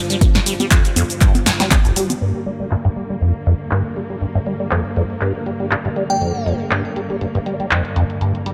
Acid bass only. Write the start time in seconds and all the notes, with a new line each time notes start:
0.10 G3
0.21 G2
0.35 G2
0.46 G3
0.60 G3
0.71 F2
0.96 F2
1.21 G2
1.46 G2
1.60 G3
1.71 G2
1.85 G1
1.96 G3
2.10 D3
2.21 G2
2.46 G3
2.60 G3
2.71 G2
2.85 G2
2.96 G3
3.10 G3
3.21 F2
3.46 F2
3.71 G2
3.96 G3
4.10 G3
4.21 G2
4.35 G2
4.46 G3
4.60 G3
4.71 F2
4.96 F2
5.21 G2
5.46 G3
5.60 G3
5.71 G2
5.85 G2
5.96 G3
6.10 G3
6.21 F2
6.46 F2
6.71 G2
6.96 G3
7.10 G3
7.21 G2
7.35 G2
7.46 G3
7.60 G3
7.71 F2
7.96 F2
8.21 G2
8.46 G3